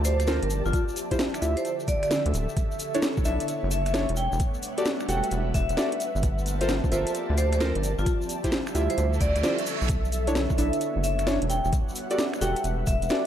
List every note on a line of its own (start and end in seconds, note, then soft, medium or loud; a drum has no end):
0.00 0.40 D2 medium
0.00 2.53 F3 medium
0.00 0.71 A#3 medium
0.00 2.53 C4 medium
0.00 0.26 F4 medium
0.00 1.48 G4 medium
0.00 0.26 A4 medium
0.00 0.26 A#4 medium
0.00 1.45 D5 medium
0.00 0.26 E5 loud
0.00 0.71 A5 medium
0.00 1.48 A5 medium
0.05 0.14 C5 medium
0.05 open hi-hat loud
0.05 shaker loud
0.20 0.25 C5 medium
0.20 finger snap soft
0.20 closed hi-hat medium
0.20 shaker soft
0.27 0.39 F4 medium
0.27 0.39 A4 medium
0.27 0.39 A#4 medium
0.27 0.37 A#4 medium
0.27 0.39 C5 loud
0.27 snare loud
0.27 shaker medium
0.43 0.62 G1 medium
0.43 0.48 A#4 medium
0.43 closed hi-hat medium
0.50 open hi-hat medium
0.50 shaker medium
0.65 0.73 G1 loud
0.65 0.79 F4 loud
0.65 shaker soft
0.73 3.22 D3 medium
0.73 2.55 G4 medium
0.73 4.13 E5 medium
0.73 kick loud
0.73 closed hi-hat medium
0.73 shaker medium
0.88 shaker soft
0.96 3.22 A4 medium
0.96 open hi-hat loud
0.96 shaker medium
1.11 1.22 E4 medium
1.11 1.22 F4 medium
1.11 1.22 G4 medium
1.11 1.22 C5 loud
1.11 kick medium
1.11 closed hi-hat medium
1.11 shaker soft
1.19 snare loud
1.19 shaker medium
1.32 3.22 E5 medium
1.32 finger snap medium
1.32 closed hi-hat soft
1.32 shaker soft
1.42 1.55 D2 loud
1.42 2.09 E4 medium
1.42 2.09 F4 medium
1.42 2.09 G4 medium
1.42 2.09 E5 medium
1.42 open hi-hat medium
1.42 shaker medium
1.57 1.68 C5 medium
1.57 closed hi-hat medium
1.57 shaker soft
1.65 closed hi-hat medium
1.65 shaker medium
1.80 shaker soft
1.88 1.98 D5 medium
1.88 kick loud
1.88 open hi-hat loud
1.88 shaker medium
2.03 2.08 D5 medium
2.03 finger snap soft
2.03 closed hi-hat soft
2.03 shaker soft
2.11 snare loud
2.11 shaker medium
2.26 2.33 D2 medium
2.26 closed hi-hat medium
2.34 2.47 D1 medium
2.34 open hi-hat medium
2.34 shaker medium
2.49 shaker soft
2.57 4.92 B3 medium
2.57 4.15 D4 medium
2.57 4.15 A4 medium
2.57 4.15 C#5 medium
2.57 kick loud
2.57 closed hi-hat medium
2.57 shaker soft
2.72 shaker soft
2.79 4.92 C#5 medium
2.79 open hi-hat loud
2.79 shaker medium
2.94 3.06 D4 medium
2.94 3.06 E4 medium
2.94 3.06 A4 medium
2.94 3.06 C#5 loud
2.94 closed hi-hat medium
2.94 shaker soft
3.02 snare loud
3.02 shaker medium
3.17 kick loud
3.17 shaker soft
3.25 3.39 B1 loud
3.25 3.92 D4 medium
3.25 3.92 E4 medium
3.25 3.92 A4 medium
3.25 3.92 E5 loud
3.25 3.42 E5 medium
3.25 open hi-hat medium
3.25 shaker loud
3.40 closed hi-hat medium
3.40 shaker soft
3.48 closed hi-hat medium
3.48 shaker medium
3.63 4.06 F#1 medium
3.71 3.81 E5 medium
3.71 open hi-hat loud
3.71 shaker loud
3.86 3.91 E5 medium
3.86 finger snap soft
3.86 closed hi-hat medium
3.86 shaker soft
3.94 4.05 D4 medium
3.94 4.05 E4 medium
3.94 4.05 A4 medium
3.94 4.05 C#5 loud
3.94 snare loud
3.94 shaker medium
4.09 4.29 E1 medium
4.09 closed hi-hat medium
4.16 5.98 G3 medium
4.16 5.98 A3 medium
4.16 5.98 D4 medium
4.16 6.85 E5 medium
4.16 5.98 F#5 medium
4.16 4.34 G5 medium
4.16 open hi-hat medium
4.16 shaker medium
4.32 4.39 E1 loud
4.32 6.00 F#5 medium
4.32 shaker soft
4.38 6.00 B4 medium
4.38 kick loud
4.38 closed hi-hat medium
4.38 shaker medium
4.54 shaker soft
4.63 open hi-hat loud
4.63 shaker medium
4.78 4.89 F#4 medium
4.78 4.89 G4 medium
4.78 4.89 A4 medium
4.78 4.89 D5 medium
4.78 closed hi-hat medium
4.78 shaker soft
4.85 snare loud
4.85 shaker medium
5.00 finger snap medium
5.00 shaker soft
5.09 5.22 E1 loud
5.09 5.75 F#4 medium
5.09 5.75 G4 medium
5.09 5.75 A4 medium
5.09 5.75 F#5 loud
5.09 5.25 G5 medium
5.09 open hi-hat medium
5.09 shaker medium
5.23 closed hi-hat medium
5.23 shaker soft
5.31 5.53 E1 loud
5.31 closed hi-hat medium
5.31 shaker soft
5.54 5.68 E1 loud
5.54 6.00 E5 loud
5.54 kick loud
5.54 open hi-hat loud
5.54 shaker medium
5.69 5.76 E1 medium
5.69 closed hi-hat medium
5.69 shaker soft
5.77 5.89 F#4 medium
5.77 5.89 G4 medium
5.77 5.89 A4 medium
5.77 5.89 D5 loud
5.77 snare loud
5.77 shaker soft
5.92 closed hi-hat medium
6.00 9.86 F3 medium
6.00 8.04 A#3 medium
6.00 9.86 C4 medium
6.00 8.81 G4 medium
6.00 8.04 A5 medium
6.00 open hi-hat medium
6.00 shaker medium
6.15 6.81 G1 medium
6.15 shaker soft
6.21 8.81 D5 medium
6.21 kick loud
6.21 closed hi-hat medium
6.21 shaker medium
6.33 8.81 A5 medium
6.38 shaker soft
6.46 open hi-hat loud
6.46 shaker medium
6.61 6.72 F4 medium
6.61 6.72 A4 medium
6.61 6.72 A#4 medium
6.61 6.72 C5 loud
6.61 closed hi-hat medium
6.61 shaker soft
6.69 snare loud
6.69 shaker medium
6.84 kick loud
6.84 shaker soft
6.92 7.05 G1 loud
6.92 7.59 F4 medium
6.92 7.59 A4 medium
6.92 7.59 A#4 medium
6.92 7.08 C5 medium
6.92 7.59 E5 loud
6.92 open hi-hat medium
6.92 shaker medium
7.07 closed hi-hat medium
7.07 shaker soft
7.15 closed hi-hat medium
7.15 shaker medium
7.30 7.73 D2 loud
7.38 7.47 C5 medium
7.38 open hi-hat loud
7.38 shaker medium
7.53 7.58 C5 medium
7.53 finger snap soft
7.53 closed hi-hat medium
7.53 shaker soft
7.60 7.72 F4 medium
7.60 7.72 A4 medium
7.60 7.72 A#4 medium
7.60 7.70 A#4 medium
7.60 7.72 C5 loud
7.60 snare loud
7.60 shaker soft
7.75 7.95 G1 medium
7.75 7.81 A#4 medium
7.75 closed hi-hat medium
7.83 open hi-hat medium
7.83 shaker medium
7.98 8.05 G1 loud
7.98 8.12 F4 medium
7.98 shaker soft
8.06 10.55 D3 medium
8.06 9.88 G3 medium
8.06 11.46 E5 medium
8.06 kick loud
8.06 closed hi-hat medium
8.06 shaker medium
8.22 10.51 E5 medium
8.22 shaker soft
8.27 10.55 A4 medium
8.27 open hi-hat loud
8.27 shaker medium
8.44 8.55 E4 medium
8.44 8.55 F4 medium
8.44 8.55 G4 medium
8.44 8.55 C5 loud
8.44 kick medium
8.44 closed hi-hat medium
8.44 shaker soft
8.52 snare loud
8.52 shaker soft
8.66 finger snap medium
8.66 shaker soft
8.75 8.88 D2 loud
8.75 9.42 E4 medium
8.75 9.42 F4 medium
8.75 9.42 G4 medium
8.75 9.42 E5 loud
8.75 open hi-hat medium
8.75 shaker medium
8.90 9.01 C5 medium
8.90 closed hi-hat medium
8.90 shaker soft
8.98 9.19 D2 loud
8.98 closed hi-hat medium
8.98 reverse cymbal medium
8.98 shaker medium
9.13 shaker soft
9.21 9.34 D2 loud
9.21 9.30 D5 medium
9.21 kick loud
9.21 open hi-hat loud
9.21 shaker medium
9.36 9.43 D2 medium
9.36 9.41 D5 medium
9.36 finger snap soft
9.36 closed hi-hat medium
9.36 shaker soft
9.43 9.55 E4 medium
9.43 9.55 F4 medium
9.43 9.55 G4 medium
9.43 9.55 C5 loud
9.43 snare loud
9.43 shaker medium
9.58 closed hi-hat medium
9.58 shaker soft
9.66 open hi-hat loud
9.66 shaker medium
9.82 10.48 B1 medium
9.82 shaker soft
9.89 12.24 B3 medium
9.89 13.27 B3 medium
9.89 13.27 D4 medium
9.89 11.48 C#5 medium
9.89 kick loud
9.89 closed hi-hat medium
9.89 shaker medium
10.05 shaker soft
10.10 12.24 F#4 medium
10.10 open hi-hat loud
10.10 shaker medium
10.27 10.38 D4 medium
10.27 10.38 E4 medium
10.27 10.38 A4 medium
10.27 10.38 C#5 loud
10.27 closed hi-hat medium
10.27 shaker soft
10.35 snare loud
10.35 shaker soft
10.50 12.24 C#5 medium
10.50 kick loud
10.50 shaker soft
10.58 10.71 B1 loud
10.58 11.25 D4 medium
10.58 11.25 E4 medium
10.58 11.25 A4 medium
10.58 10.75 E5 medium
10.58 11.25 E5 loud
10.58 open hi-hat loud
10.58 shaker medium
10.73 closed hi-hat medium
10.73 shaker soft
10.81 closed hi-hat medium
10.81 shaker soft
10.96 11.39 F#1 medium
11.04 11.13 E5 medium
11.04 open hi-hat loud
11.04 shaker medium
11.19 11.24 E5 medium
11.19 finger snap soft
11.19 closed hi-hat medium
11.19 shaker soft
11.27 11.38 D4 medium
11.27 11.38 E4 medium
11.27 11.38 A4 medium
11.27 11.38 C#5 loud
11.27 snare loud
11.27 shaker soft
11.42 11.61 E1 medium
11.42 closed hi-hat medium
11.50 13.27 G3 medium
11.50 13.27 E5 medium
11.50 13.27 F#5 medium
11.50 11.66 G5 medium
11.50 open hi-hat loud
11.50 shaker medium
11.65 11.72 E1 loud
11.65 shaker soft
11.69 13.27 B4 medium
11.69 kick loud
11.69 closed hi-hat medium
11.69 shaker medium
11.89 shaker soft
11.95 open hi-hat loud
11.95 shaker loud
12.05 13.27 F#5 medium
12.10 12.22 F#4 medium
12.10 12.22 G4 medium
12.10 12.22 A4 medium
12.10 12.22 D5 loud
12.10 closed hi-hat medium
12.10 shaker soft
12.18 snare loud
12.18 shaker medium
12.34 finger snap medium
12.34 shaker soft
12.41 12.55 E1 loud
12.41 13.08 F#4 medium
12.41 13.08 G4 medium
12.41 13.08 A4 medium
12.41 13.08 F#5 loud
12.41 12.58 G5 medium
12.41 open hi-hat medium
12.41 shaker loud
12.56 closed hi-hat medium
12.56 shaker soft
12.64 12.85 E1 medium
12.64 closed hi-hat medium
12.64 shaker medium
12.87 13.00 E1 loud
12.87 13.27 E5 loud
12.87 kick loud
12.87 open hi-hat loud
12.87 shaker medium
13.02 13.09 E1 medium
13.02 closed hi-hat medium
13.02 shaker soft
13.09 13.21 F#4 medium
13.09 13.21 G4 medium
13.09 13.21 A4 medium
13.09 13.21 D5 loud
13.09 snare loud
13.09 shaker medium